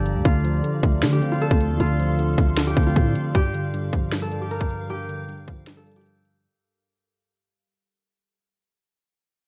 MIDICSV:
0, 0, Header, 1, 6, 480
1, 0, Start_track
1, 0, Key_signature, -2, "minor"
1, 0, Tempo, 387097
1, 312, Time_signature, 4, 2, 24, 8
1, 11751, End_track
2, 0, Start_track
2, 0, Title_t, "Ambient pad"
2, 0, Program_c, 0, 92
2, 0, Note_on_c, 0, 67, 81
2, 0, Note_on_c, 0, 74, 73
2, 0, Note_on_c, 0, 77, 72
2, 0, Note_on_c, 0, 82, 86
2, 263, Note_off_c, 0, 77, 0
2, 273, Note_off_c, 0, 67, 0
2, 273, Note_off_c, 0, 82, 0
2, 312, Note_on_c, 0, 69, 79
2, 312, Note_on_c, 0, 77, 72
2, 313, Note_on_c, 0, 84, 88
2, 4102, Note_off_c, 0, 74, 0
2, 4114, Note_off_c, 0, 69, 0
2, 4114, Note_off_c, 0, 77, 0
2, 4114, Note_off_c, 0, 84, 0
2, 4151, Note_on_c, 0, 43, 78
2, 4152, Note_on_c, 0, 55, 72
2, 4152, Note_on_c, 0, 70, 74
2, 4152, Note_on_c, 0, 77, 83
2, 7953, Note_off_c, 0, 43, 0
2, 7953, Note_off_c, 0, 55, 0
2, 7954, Note_off_c, 0, 70, 0
2, 7954, Note_off_c, 0, 77, 0
2, 11751, End_track
3, 0, Start_track
3, 0, Title_t, "Harp"
3, 0, Program_c, 1, 46
3, 0, Note_on_c, 1, 67, 73
3, 0, Note_on_c, 1, 69, 89
3, 310, Note_on_c, 1, 65, 102
3, 1389, Note_off_c, 1, 67, 0
3, 1394, Note_on_c, 1, 67, 82
3, 1628, Note_off_c, 1, 65, 0
3, 1633, Note_on_c, 1, 65, 81
3, 1749, Note_off_c, 1, 69, 0
3, 1754, Note_on_c, 1, 69, 84
3, 2228, Note_off_c, 1, 65, 0
3, 2233, Note_on_c, 1, 65, 115
3, 3305, Note_off_c, 1, 67, 0
3, 3310, Note_on_c, 1, 67, 84
3, 3548, Note_off_c, 1, 65, 0
3, 3552, Note_on_c, 1, 65, 71
3, 4147, Note_off_c, 1, 67, 0
3, 4152, Note_on_c, 1, 67, 112
3, 4477, Note_off_c, 1, 69, 0
3, 5232, Note_on_c, 1, 69, 78
3, 5468, Note_off_c, 1, 67, 0
3, 5473, Note_on_c, 1, 67, 80
3, 5591, Note_on_c, 1, 70, 88
3, 5666, Note_off_c, 1, 69, 0
3, 6069, Note_off_c, 1, 67, 0
3, 6074, Note_on_c, 1, 67, 109
3, 6681, Note_off_c, 1, 65, 0
3, 7154, Note_on_c, 1, 69, 79
3, 7229, Note_off_c, 1, 70, 0
3, 7389, Note_off_c, 1, 67, 0
3, 7394, Note_on_c, 1, 67, 69
3, 9877, Note_off_c, 1, 69, 0
3, 10313, Note_off_c, 1, 67, 0
3, 11751, End_track
4, 0, Start_track
4, 0, Title_t, "Tine electric piano"
4, 0, Program_c, 2, 4
4, 0, Control_c, 2, 64, 127
4, 0, Note_on_c, 2, 43, 93
4, 0, Note_on_c, 2, 50, 87
4, 0, Note_on_c, 2, 53, 85
4, 0, Note_on_c, 2, 55, 87
4, 312, Note_off_c, 2, 43, 0
4, 312, Note_off_c, 2, 50, 0
4, 312, Note_off_c, 2, 53, 0
4, 312, Note_off_c, 2, 55, 0
4, 312, Note_on_c, 2, 50, 89
4, 328, Control_c, 2, 64, 0
4, 552, Note_on_c, 2, 53, 89
4, 575, Control_c, 2, 64, 127
4, 777, Note_off_c, 2, 50, 0
4, 791, Note_on_c, 2, 50, 82
4, 1031, Note_on_c, 2, 57, 88
4, 1256, Note_off_c, 2, 50, 0
4, 1271, Note_on_c, 2, 50, 93
4, 1512, Note_on_c, 2, 60, 90
4, 1752, Note_off_c, 2, 53, 0
4, 2216, Note_off_c, 2, 50, 0
4, 2231, Note_on_c, 2, 50, 99
4, 2232, Note_off_c, 2, 57, 0
4, 2472, Note_on_c, 2, 53, 84
4, 2696, Note_off_c, 2, 50, 0
4, 2711, Note_on_c, 2, 50, 87
4, 2712, Note_off_c, 2, 60, 0
4, 2951, Note_on_c, 2, 57, 77
4, 3175, Note_off_c, 2, 50, 0
4, 3190, Note_on_c, 2, 50, 96
4, 3431, Note_on_c, 2, 60, 88
4, 3672, Note_off_c, 2, 53, 0
4, 4151, Note_off_c, 2, 50, 0
4, 4151, Note_off_c, 2, 60, 0
4, 4152, Note_off_c, 2, 57, 0
4, 4152, Note_on_c, 2, 43, 90
4, 4166, Control_c, 2, 64, 0
4, 4392, Note_on_c, 2, 50, 87
4, 4398, Control_c, 2, 64, 127
4, 4617, Note_off_c, 2, 43, 0
4, 4632, Note_on_c, 2, 43, 83
4, 4872, Note_on_c, 2, 53, 84
4, 5096, Note_off_c, 2, 43, 0
4, 5111, Note_on_c, 2, 43, 89
4, 5352, Note_on_c, 2, 55, 83
4, 5592, Note_off_c, 2, 50, 0
4, 6057, Note_off_c, 2, 43, 0
4, 6072, Note_off_c, 2, 53, 0
4, 6072, Note_on_c, 2, 43, 101
4, 6312, Note_on_c, 2, 50, 80
4, 6537, Note_off_c, 2, 43, 0
4, 6552, Note_off_c, 2, 55, 0
4, 6552, Note_on_c, 2, 43, 89
4, 6791, Note_on_c, 2, 53, 83
4, 7017, Note_off_c, 2, 43, 0
4, 7032, Note_on_c, 2, 43, 91
4, 7271, Note_on_c, 2, 55, 81
4, 7512, Note_off_c, 2, 50, 0
4, 7992, Note_off_c, 2, 43, 0
4, 7992, Note_off_c, 2, 53, 0
4, 7992, Note_off_c, 2, 55, 0
4, 8007, Control_c, 2, 64, 0
4, 11751, End_track
5, 0, Start_track
5, 0, Title_t, "808-style bass"
5, 0, Program_c, 3, 38
5, 0, Note_on_c, 3, 31, 111
5, 192, Note_on_c, 3, 38, 102
5, 211, Note_off_c, 3, 31, 0
5, 306, Note_off_c, 3, 38, 0
5, 312, Note_on_c, 3, 38, 117
5, 773, Note_off_c, 3, 38, 0
5, 1032, Note_on_c, 3, 38, 108
5, 1272, Note_on_c, 3, 50, 102
5, 1291, Note_off_c, 3, 38, 0
5, 1500, Note_off_c, 3, 50, 0
5, 1873, Note_on_c, 3, 38, 112
5, 2112, Note_on_c, 3, 39, 105
5, 2131, Note_off_c, 3, 38, 0
5, 2226, Note_off_c, 3, 39, 0
5, 2233, Note_on_c, 3, 38, 116
5, 2924, Note_off_c, 3, 38, 0
5, 2952, Note_on_c, 3, 38, 101
5, 3413, Note_off_c, 3, 38, 0
5, 3432, Note_on_c, 3, 38, 103
5, 3662, Note_off_c, 3, 38, 0
5, 3672, Note_on_c, 3, 45, 114
5, 3903, Note_off_c, 3, 45, 0
5, 11751, End_track
6, 0, Start_track
6, 0, Title_t, "Drums"
6, 72, Note_on_c, 9, 42, 67
6, 196, Note_off_c, 9, 42, 0
6, 312, Note_on_c, 9, 36, 127
6, 313, Note_on_c, 9, 42, 85
6, 436, Note_off_c, 9, 36, 0
6, 437, Note_off_c, 9, 42, 0
6, 554, Note_on_c, 9, 42, 73
6, 678, Note_off_c, 9, 42, 0
6, 796, Note_on_c, 9, 42, 72
6, 920, Note_off_c, 9, 42, 0
6, 1032, Note_on_c, 9, 36, 100
6, 1033, Note_on_c, 9, 42, 82
6, 1156, Note_off_c, 9, 36, 0
6, 1157, Note_off_c, 9, 42, 0
6, 1272, Note_on_c, 9, 38, 119
6, 1272, Note_on_c, 9, 42, 66
6, 1396, Note_off_c, 9, 38, 0
6, 1396, Note_off_c, 9, 42, 0
6, 1514, Note_on_c, 9, 42, 70
6, 1638, Note_off_c, 9, 42, 0
6, 1756, Note_on_c, 9, 42, 77
6, 1873, Note_on_c, 9, 36, 100
6, 1880, Note_off_c, 9, 42, 0
6, 1992, Note_on_c, 9, 42, 68
6, 1997, Note_off_c, 9, 36, 0
6, 2116, Note_off_c, 9, 42, 0
6, 2233, Note_on_c, 9, 42, 85
6, 2357, Note_off_c, 9, 42, 0
6, 2474, Note_on_c, 9, 42, 72
6, 2598, Note_off_c, 9, 42, 0
6, 2716, Note_on_c, 9, 42, 72
6, 2840, Note_off_c, 9, 42, 0
6, 2952, Note_on_c, 9, 36, 99
6, 2953, Note_on_c, 9, 42, 79
6, 3076, Note_off_c, 9, 36, 0
6, 3077, Note_off_c, 9, 42, 0
6, 3191, Note_on_c, 9, 38, 119
6, 3192, Note_on_c, 9, 42, 65
6, 3315, Note_off_c, 9, 38, 0
6, 3316, Note_off_c, 9, 42, 0
6, 3432, Note_on_c, 9, 36, 102
6, 3432, Note_on_c, 9, 42, 72
6, 3512, Note_off_c, 9, 42, 0
6, 3512, Note_on_c, 9, 42, 57
6, 3556, Note_off_c, 9, 36, 0
6, 3592, Note_off_c, 9, 42, 0
6, 3592, Note_on_c, 9, 42, 43
6, 3672, Note_on_c, 9, 36, 95
6, 3675, Note_off_c, 9, 42, 0
6, 3675, Note_on_c, 9, 42, 77
6, 3796, Note_off_c, 9, 36, 0
6, 3799, Note_off_c, 9, 42, 0
6, 3911, Note_on_c, 9, 42, 65
6, 4035, Note_off_c, 9, 42, 0
6, 4153, Note_on_c, 9, 36, 124
6, 4153, Note_on_c, 9, 42, 81
6, 4277, Note_off_c, 9, 36, 0
6, 4277, Note_off_c, 9, 42, 0
6, 4394, Note_on_c, 9, 42, 72
6, 4518, Note_off_c, 9, 42, 0
6, 4637, Note_on_c, 9, 42, 67
6, 4761, Note_off_c, 9, 42, 0
6, 4873, Note_on_c, 9, 36, 94
6, 4874, Note_on_c, 9, 42, 78
6, 4997, Note_off_c, 9, 36, 0
6, 4998, Note_off_c, 9, 42, 0
6, 5113, Note_on_c, 9, 38, 116
6, 5114, Note_on_c, 9, 42, 65
6, 5237, Note_off_c, 9, 38, 0
6, 5238, Note_off_c, 9, 42, 0
6, 5353, Note_on_c, 9, 42, 67
6, 5477, Note_off_c, 9, 42, 0
6, 5595, Note_on_c, 9, 42, 69
6, 5713, Note_on_c, 9, 36, 96
6, 5719, Note_off_c, 9, 42, 0
6, 5831, Note_on_c, 9, 42, 63
6, 5837, Note_off_c, 9, 36, 0
6, 5955, Note_off_c, 9, 42, 0
6, 6072, Note_on_c, 9, 42, 78
6, 6196, Note_off_c, 9, 42, 0
6, 6314, Note_on_c, 9, 42, 68
6, 6438, Note_off_c, 9, 42, 0
6, 6556, Note_on_c, 9, 42, 66
6, 6680, Note_off_c, 9, 42, 0
6, 6792, Note_on_c, 9, 36, 95
6, 6794, Note_on_c, 9, 42, 76
6, 6916, Note_off_c, 9, 36, 0
6, 6918, Note_off_c, 9, 42, 0
6, 7032, Note_on_c, 9, 38, 113
6, 7033, Note_on_c, 9, 42, 66
6, 7156, Note_off_c, 9, 38, 0
6, 7157, Note_off_c, 9, 42, 0
6, 7273, Note_on_c, 9, 42, 57
6, 7334, Note_off_c, 9, 42, 0
6, 7334, Note_on_c, 9, 42, 55
6, 7393, Note_off_c, 9, 42, 0
6, 7393, Note_on_c, 9, 42, 56
6, 7454, Note_off_c, 9, 42, 0
6, 7454, Note_on_c, 9, 42, 58
6, 7516, Note_off_c, 9, 42, 0
6, 7516, Note_on_c, 9, 42, 72
6, 7640, Note_off_c, 9, 42, 0
6, 7752, Note_on_c, 9, 42, 62
6, 7876, Note_off_c, 9, 42, 0
6, 11751, End_track
0, 0, End_of_file